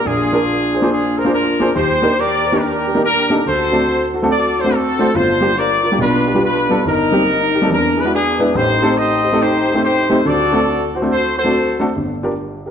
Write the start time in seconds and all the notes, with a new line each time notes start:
0.05 A#1 A#2 D4 F4 G#4
0.33 A#3 D4 F4 G#4 A#4
0.74 G#4 C5
0.82 A#3 D4 F4 G#4 C5
0.90 D4 F4 G#4
1.17 G#4 A#4 C5
1.25 A#3 D4 F4 G#4 C5
1.32 D4 F4 A#4
1.60 A#3 D4 F4 G#4 C5
1.75 D#2 D#3 G4 C5
2.02 A#3 D4 D#4 G4 A#4
2.18 G4 A#4 D5
2.45 G4 C5
2.52 A#3 D4 D#4 G4 A#4
2.60 D4 G4 A#4
2.87 G4 A#4
2.95 A#3 D4 D#4 G4 A#4
3.03 D4 G4 A#4
3.30 A#3 D4 D#4 G4 A4
3.45 D2 D3 F#4 A4 C5
3.72 A3 C4 D4 F#4 A4
4.14 F#4 A4
4.22 A3 C4 D4 F#4 A4
4.30 F#4 A4 D5
4.57 F#4 A4 C5
4.64 A3 C4 D4 F#4 C5
4.73 C4 F#4 A4
4.99 A3 C4 D4 F#4 C5
5.14 G1 G2 F4 C5
5.41 G3 A#3 D4 F4 G4
5.58 F4 A#4 D5
5.83 F4 A#4
5.91 G3 A#3 D4 F4 G4
5.98 B1 B2 D4 F4 B4
6.26 F4 G4
6.34 G3 B3 D4 F4 G4
6.43 D4 F4 B4
6.69 G3 B3 D4 F4 A4
6.85 G1 G2 D#4 A#4
7.12 G3 A#3 C4 D#4 G4
7.54 D#4 G4
7.62 G3 A#3 C4 D#4 A4
7.70 E2 E3 D4 A#4
7.96 E4 G#4 B4
8.04 G#3 B3 D4 E4 F#4
8.13 B3 D4 G#4
8.39 G#3 B3 D4 E4 B4
8.54 A1 A2 D#4 G4 C5
8.82 A3 C4 D#4 G4 A4
8.98 G4 C5 D#5
9.24 G4 C5
9.32 A3 C4 D#4 G4 A4
9.41 D#4 G4 C5
9.68 G4 A4
9.74 A3 C4 D#4 G4 C5
9.83 D#4 G4 C5
10.10 A3 C4 D#4 G4 C5
10.25 D2 D3 F#4 A4 D5
10.52 A3 C4 D4 F#4 A4
10.95 F#4 C5
11.02 A3 C4 D4 F#4 C5
11.10 F#4 A4 C5
11.37 F#4 A4 C5
11.44 A3 C4 D4 F#4 A4
11.80 A3 C4 D4 F#4 A4
11.96 G1 G2
12.23 D4 F4 G4 A#4
12.66 G4 A#4